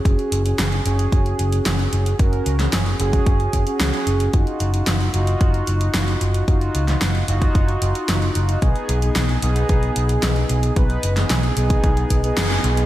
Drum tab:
HH |xxxxxxxxxxxxxxxx|xxxxxxxxxxxxxxxx|xxxxxxxxxxxxxxxx|xxxxxxxxxxxxxxxx|
SD |----o-------o---|---oo-------o---|----o-------o---|---oo-------o---|
BD |o-------o-------|o------oo-o-----|o-------o-------|o------oo-------|

HH |xxxxxxxxxxxxxxxx|xxxxxxxxxxxxxxxx|
SD |----o-------o---|---oo-------o---|
BD |o-------o-------|o------oo-o-----|